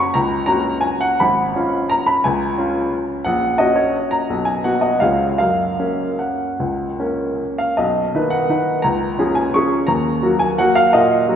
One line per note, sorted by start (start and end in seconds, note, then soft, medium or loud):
0.00 0.11 C#4 soft
0.00 0.11 F#4 soft
0.00 0.14 C#6 medium
0.14 0.47 C#2 soft
0.14 0.45 A#5 medium
0.46 1.17 C#4 soft
0.46 1.17 F#4 soft
0.46 0.82 A#5 medium
0.81 1.01 G#5 medium
1.01 1.20 F#5 medium
1.20 1.54 G#1 soft
1.20 1.90 B5 medium
1.56 2.21 C#4 soft
1.56 2.21 F4 soft
1.90 2.07 A#5 medium
2.06 2.24 B5 medium
2.24 2.57 C#2 soft
2.24 2.92 G#5 medium
2.58 3.22 C#4 soft
2.58 3.23 F4 soft
3.24 3.59 A#1 soft
3.24 3.59 F#5 medium
3.58 4.26 C#4 soft
3.58 4.26 F#4 soft
3.58 3.77 D#5 medium
3.76 4.12 C#5 soft
4.11 4.46 A#5 medium
4.30 4.63 B1 soft
4.45 4.64 G#5 medium
4.64 4.98 B3 soft
4.64 4.99 F#4 soft
4.64 4.83 F#5 soft
4.81 5.01 D#5 soft
5.00 5.39 C#2 soft
5.00 5.36 C#3 soft
5.00 5.37 G#3 soft
5.00 5.37 C#4 soft
5.00 5.37 F5 soft
5.38 5.78 F#2 soft
5.38 6.19 F5 soft
5.79 6.56 A#3 soft
5.79 6.56 C#4 soft
6.19 7.59 F#5 soft
6.60 6.98 C#2 soft
6.99 7.74 A#3 soft
6.99 7.74 C#4 soft
7.58 7.78 F5 soft
7.77 8.13 B1 soft
7.77 8.31 D#5 medium
8.15 8.46 D#3 soft
8.15 8.46 D#4 soft
8.15 8.46 B4 soft
8.30 8.83 F#5 medium
8.49 8.81 D#3 soft
8.49 8.81 D#4 soft
8.49 8.81 B4 soft
8.82 9.18 C#2 soft
8.82 9.36 A#5 medium
9.19 9.51 F3 soft
9.19 9.51 C#4 soft
9.19 9.51 G#4 soft
9.35 9.54 G#5 medium
9.54 9.85 F3 soft
9.54 9.86 C#4 soft
9.54 9.86 G#4 soft
9.54 9.88 C#6 medium
9.87 10.21 D#2 soft
9.87 10.39 A#5 medium
10.22 10.55 F#3 soft
10.22 10.55 A#3 soft
10.22 10.55 F#4 soft
10.39 10.58 G#5 medium
10.58 10.90 F#3 soft
10.58 10.91 A#3 soft
10.58 10.91 F#4 soft
10.58 10.76 F#5 medium
10.75 10.93 F5 medium
10.93 11.27 A#2 soft
10.93 11.36 D#5 medium
11.28 11.36 F#3 soft
11.28 11.36 A#3 soft
11.28 11.36 F#4 soft